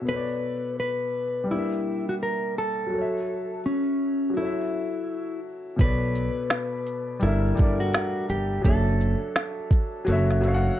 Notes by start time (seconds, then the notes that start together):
0.01 B2 B3
0.09 A4 B4 C#5
0.16 D5
0.80 B4
1.44 G3 D4
1.51 A#3 E4 G4
1.59 E5
2.09 F#4
2.23 A#4
2.58 A4
2.87 F#3 F#4
2.94 A4 C#5
3.01 E5
3.66 C#4
4.30 F#3 F#4
4.37 E4 A4 C#5
4.44 E5
5.76 B1 B2 B3 A4, kick, closed hi-hat
5.81 B4 C#5 D5
6.15 shaker
6.50 snare, closed hi-hat
6.87 closed hi-hat, shaker
7.19 G1 G3 D4 E4 A4, closed hi-hat
7.25 A#4 E5
7.55 G3 D4 A4, shaker
7.59 G1 A#4 D5, kick
7.80 F#4
7.94 snare, closed hi-hat
8.29 G1 G4, shaker
8.62 F#1 F#3 D4 A4, kick, closed hi-hat
8.67 C#5 E5
9.01 shaker
9.36 snare, closed hi-hat
9.71 kick, closed hi-hat, shaker
10.05 F#1 F#3 F#4 A4, closed hi-hat
10.10 C#5 E5
10.31 snare
10.41 F#3 F#4 A4, shaker
10.46 C#5 F5
10.54 F#5